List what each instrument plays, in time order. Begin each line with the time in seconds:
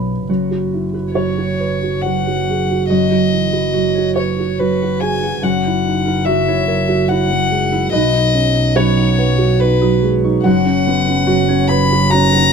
Already playing: felt piano B1 F#2 B4, double bass B1, harp D#4 B4 F#5 B5
0.28 double bass F#1, felt piano F#2, harp F#4
0.51 felt piano F#4
0.74 felt piano E4
0.94 felt piano F#4, harp B4
1.13 felt piano F#3 C#5, harp F#4, violin C#5
1.38 felt piano F#4, harp C#5
1.60 felt piano B4, harp C#5
1.83 felt piano F#4
2.02 felt piano F#3 F#5, harp F#4, violin F#5
2.26 felt piano F#4, harp F#5
2.50 felt piano G#4
2.69 felt piano F#4, harp F#5
2.90 felt piano F#2 D#5, harp F#4, violin D#5
3.11 felt piano F#3
3.32 felt piano E3
3.52 felt piano F#4, harp B4
3.73 felt piano F#3, harp F#4
3.95 felt piano F#4, harp C#5
4.16 felt piano B4 C#5, violin C#5, harp C#5
4.39 felt piano F#4
4.59 felt piano F#3 B4, harp F#4, violin B4
4.82 felt piano F#4, harp F#5
5.01 felt piano G#4 G#5, violin G#5
5.23 felt piano F#4, harp F#5
5.42 double bass F#1, felt piano F#2 F#5, harp F#4, violin F#5
5.66 felt piano E4
5.86 felt piano D#4
6.05 felt piano E4, harp A#4
6.25 felt piano F#3 E5, harp F#4, violin E5
6.48 felt piano E4, harp C#5
6.68 felt piano A#4, harp C#5
6.88 felt piano F#4
7.08 felt piano E4 F#5, harp F#4, violin F#5
7.30 felt piano F#3, harp E5
7.51 felt piano G#3
7.72 felt piano E4, harp E5
7.91 double bass B1, felt piano B1 D#5, harp B4, violin D#5
8.13 felt piano D#4
8.34 felt piano C#4
8.54 felt piano D#4, harp D#5
8.75 felt piano F#3 C#5, harp B4, violin C#5
8.97 felt piano D#4, harp F#5
9.18 felt piano B4, harp F#5
9.38 felt piano F#4
9.60 felt piano D#4 B4, harp B4, violin B4
9.82 felt piano F#3, harp D#6
10.03 felt piano G#3
10.23 felt piano D#4, harp C#6
10.44 double bass F#1, felt piano F#2 F#5, harp F#4, violin F#5
10.66 felt piano C#4
10.87 felt piano B3
11.07 felt piano C#4, harp B4
11.27 felt piano F#3, harp F#4
11.48 felt piano C#4, harp C#5
11.68 felt piano B4 B5, harp C#5, violin B5
11.92 felt piano F#4
12.10 felt piano C#4 A#5, harp F#4, violin A#5
12.32 felt piano F#3, harp F#5